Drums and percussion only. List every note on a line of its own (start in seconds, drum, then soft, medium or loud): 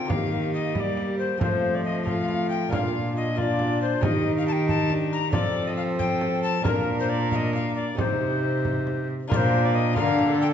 0.10 frame drum medium
0.75 frame drum soft
0.97 frame drum soft
1.41 frame drum medium
2.07 frame drum soft
2.29 frame drum soft
2.72 frame drum medium
3.38 frame drum soft
3.59 frame drum soft
4.03 frame drum medium
4.69 frame drum soft
4.90 frame drum soft
5.33 frame drum medium
6.00 frame drum medium
6.21 frame drum soft
6.65 frame drum medium
7.32 frame drum soft
7.53 frame drum soft
7.98 frame drum medium
8.65 frame drum medium
8.87 frame drum soft
9.31 frame drum medium
9.96 frame drum medium
10.19 frame drum medium